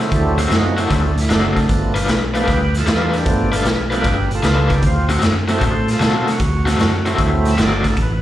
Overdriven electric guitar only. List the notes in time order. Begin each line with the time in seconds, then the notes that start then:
0.38 D3 A3 C4 F#4
0.77 D3 A3 C4 F#4
1.30 D3 A3 C4 F#4
1.95 G3 D4 F4 B4
2.34 G3 D4 F4 B4
2.86 G3 D4 F4 B4
3.52 G3 D4 F4 B4
3.90 G3 D4 F4 B4
4.43 G3 D4 F4 B4
5.09 D3 A3 C4 F#4
5.48 D3 A3 C4 F#4
6.00 D3 A3 C4 F#4
6.66 D3 A3 C4 F#4
7.06 D3 A3 C4 F#4
7.58 D3 A3 C4 F#4